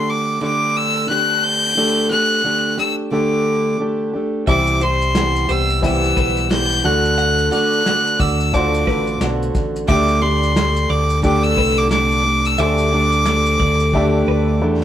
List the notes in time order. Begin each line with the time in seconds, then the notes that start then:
Already playing: D3 A3 D4 G4 C6
0.10 D6
0.41 D3 A3 D4 G4 D6
0.77 E6
1.09 D3 A3 D4 G4 F#6
1.44 G6
1.77 D3 A3 D4 G4
2.10 A3 D4 G4 F#6
2.44 D3 A3 D4 G4
2.78 A3 D4 G4 E6
3.12 D3 A3 D4 G4 D6
3.79 D3 A3 D4 G4
4.13 A3 D4 G4
4.46 C2 C3 E3 G3 B3 C4 G4 E5 D6, kick, shaker
4.67 shaker
4.81 G3 G4 C5 C6, shaker
5.02 shaker
5.15 E3 G3 B3 G4, snare, shaker
5.36 shaker
5.49 C2 G3 B3 G4 C5 E6, shaker
5.70 shaker
5.81 E3 G3 B3 C4 G4 B4 E5 E6, kick, shaker
6.04 shaker
6.17 B1 B4, kick, snare, shaker
6.37 shaker
6.50 E3 G3 B3 G4 G6, snare, shaker
6.72 shaker
6.83 D2 D3 A3 D4 F#4 A4 F#5 F#6
7.05 shaker
7.18 F#5, shaker
7.39 shaker
7.52 A3 D4 F#4 D5 F#6, shaker
7.73 shaker
7.85 D3 A3 D4 F#4, snare, shaker
8.07 shaker
8.19 D2 A3 D4 F#4 D5 E6, kick, shaker
8.40 shaker
8.52 D3 A3 D4 F4 F#4 A4 C5 D6, kick, shaker
8.59 F#4
8.74 shaker
8.87 A1 B4, kick, snare
9.07 shaker
9.21 B1 D3 A3 D4 F#4, snare, shaker
9.43 shaker
9.54 A1, kick, shaker
9.76 shaker
9.87 D2 D3 A3 D4 G4 A4 E5 G5 D6, kick, shaker
10.09 shaker
10.21 A3 D4 G4 D5 C6
10.43 shaker
10.56 D3 A3 D4 G4, snare, shaker
10.76 shaker
10.89 D2 D5 D6
11.10 shaker
11.22 D3 A3 D4 G4 A4 G5 D6, kick, shaker
11.43 E6, shaker
11.57 C2 B4, kick, snare
11.77 D6, shaker
11.90 D3 A3 D4 G4 D6, snare, shaker
12.12 shaker
12.24 A3 D4 G4
12.45 E6, shaker
12.58 D2 D3 A3 D4 G4 G#4 C5 E5 D6, shaker
12.65 A4
12.78 shaker
12.92 A3 D4 G4 D5
13.12 shaker
13.25 D3 A3 D4 G4, snare, shaker
13.46 shaker
13.60 D2 D5, kick
13.80 shaker
13.93 D3 A3 D4 G4 A4 E5, kick
14.27 D2 B4
14.61 E2 D3 A3 D4 G4